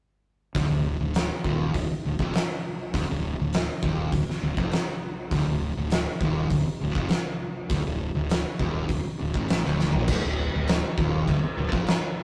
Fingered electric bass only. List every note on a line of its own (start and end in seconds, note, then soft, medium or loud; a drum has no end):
0.55 0.69 D1 medium
0.70 0.98 D1 medium
1.00 1.28 D1 medium
1.45 1.73 D#1 loud
1.75 1.89 D1 medium
1.91 muted fingered electric bass stroke soft
2.06 2.19 D1 medium
2.19 2.33 F1 medium
2.94 3.08 D1 medium
3.10 3.37 D1 medium
3.40 3.67 D1 medium
3.83 4.11 D#1 medium
4.13 4.27 D1 medium
4.28 muted fingered electric bass stroke soft
4.43 4.57 D1 medium
4.57 4.72 F1 loud
5.32 5.46 D1 medium
5.48 5.76 D1 medium
5.77 6.05 D1 medium
6.21 6.49 D#1 medium
6.50 6.65 D1 medium
6.67 muted fingered electric bass stroke soft
6.83 6.94 D1 medium
6.95 7.09 F1 medium
7.69 7.84 D1 medium
7.86 8.14 D1 medium
8.15 8.43 D1 medium
8.59 8.88 D#1 medium
8.89 9.04 D1 medium
9.05 muted fingered electric bass stroke soft
9.20 9.34 D1 medium
9.34 9.62 A1 medium
9.66 9.93 D1 medium
9.95 10.07 A#1 loud
10.08 10.22 D1 loud
10.24 10.52 D1 medium
10.54 10.81 D1 medium
10.97 11.25 D#1 loud
11.27 11.42 D1 medium
11.43 muted fingered electric bass stroke soft
11.57 11.71 D1 medium
11.72 11.86 F1 loud